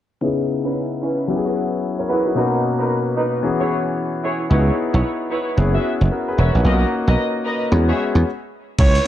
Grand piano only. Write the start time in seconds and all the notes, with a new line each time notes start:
0.21 C#3 B3 D#4 E4 G#4
1.28 F#3 B3 C#4 E4 G4
1.36 G#4
1.99 A#4 C#5
2.10 G#4 B4
2.26 D#4 F#4
2.35 B2 A#3 C#4 D#4 F#4
3.42 E3 B3 C#4 F#4 G#4
4.50 B3 D#4 E4 F#4
4.59 G#4
5.57 B3 C#4 E4 G#4
6.12 F#4 A#4
6.28 G#4 B4
6.38 A#4 C#5
6.56 D#5 F#5
6.64 A#3 C#4 D#4 F4
6.73 F#4
7.71 G#3 B3 C#4 F#4